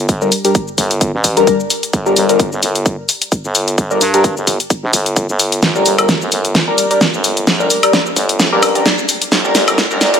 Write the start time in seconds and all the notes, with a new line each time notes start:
0.09 G1, kick, closed hi-hat, shaker
0.22 G3 D4 A#4, shaker
0.32 open hi-hat, shaker
0.45 G3 D4 A#4, closed hi-hat, shaker
0.55 kick, closed hi-hat, shaker
0.68 shaker
0.78 G1, kick, open hi-hat, shaker
0.91 closed hi-hat, shaker
1.01 kick, closed hi-hat, shaker
1.14 A1
1.24 kick, open hi-hat, shaker
1.37 G3 D4 A#4, closed hi-hat, shaker
1.47 kick, closed hi-hat, shaker
1.60 shaker
1.70 open hi-hat, shaker
1.83 closed hi-hat, shaker
1.93 G1, kick, closed hi-hat, shaker
2.06 G3 D4 A#4, shaker
2.16 G1, open hi-hat, shaker
2.29 G3 D4 A#4, closed hi-hat, shaker
2.40 kick, closed hi-hat, shaker
2.52 G1, shaker
2.63 G1, open hi-hat, shaker
2.75 closed hi-hat, shaker
2.86 kick, closed hi-hat, shaker
3.09 open hi-hat, shaker
3.22 closed hi-hat, shaker
3.32 kick, closed hi-hat, shaker
3.45 G1, shaker
3.55 open hi-hat, shaker
3.68 closed hi-hat, shaker
3.78 G1, kick, closed hi-hat, shaker
3.91 G3 D4 A#4, shaker
4.01 G2, open hi-hat, shaker
4.14 G3 D4 A#4, closed hi-hat, shaker
4.24 kick, closed hi-hat, shaker
4.37 G1, shaker
4.47 kick, open hi-hat, shaker
4.60 closed hi-hat, shaker
4.70 kick, closed hi-hat, shaker
4.83 A#1
4.93 G1, kick, open hi-hat, shaker
5.06 closed hi-hat, shaker
5.16 kick, closed hi-hat, shaker
5.29 G1, shaker
5.39 open hi-hat, shaker
5.52 closed hi-hat, shaker
5.63 G1, kick, snare, closed hi-hat, shaker
5.75 G3 D4 A#4, shaker
5.86 G1, open hi-hat, shaker
5.98 G3 D4 A#4, closed hi-hat, high woodblock, shaker
6.09 kick, snare, closed hi-hat, shaker
6.22 G1, shaker
6.32 G1, open hi-hat, shaker
6.45 closed hi-hat, shaker
6.55 kick, snare, closed hi-hat, shaker
6.68 G3 D4 A#4
6.78 open hi-hat, shaker
6.91 G3 D4 A#4, closed hi-hat, shaker
7.01 kick, snare, closed hi-hat, shaker
7.14 G1, shaker
7.24 open hi-hat, shaker
7.37 closed hi-hat, shaker
7.47 G1, kick, snare, closed hi-hat, shaker
7.60 G3 D4 A#4, shaker
7.70 open hi-hat, shaker
7.83 G3 D4 A#4, closed hi-hat, high woodblock, shaker
7.93 kick, snare, closed hi-hat, shaker
8.06 shaker
8.16 G1, kick, open hi-hat, shaker
8.29 closed hi-hat, shaker
8.39 kick, snare, closed hi-hat, shaker
8.52 A1 G3 D4 A#4
8.63 kick, open hi-hat, high woodblock, shaker
8.75 G3 D4 A#4, closed hi-hat, shaker
8.86 kick, snare, closed hi-hat, shaker
8.98 shaker
9.09 open hi-hat, shaker
9.22 closed hi-hat, shaker
9.32 G1, kick, snare, closed hi-hat, shaker
9.45 G3 D4 A#4, shaker
9.55 G1, snare, open hi-hat, shaker
9.68 G3 D4 A#4, closed hi-hat, high woodblock, shaker
9.78 kick, snare, closed hi-hat, shaker
9.91 G1 G3 D4 A#4, shaker
10.01 G1, snare, open hi-hat, shaker
10.14 G3 D4 A#4, closed hi-hat, shaker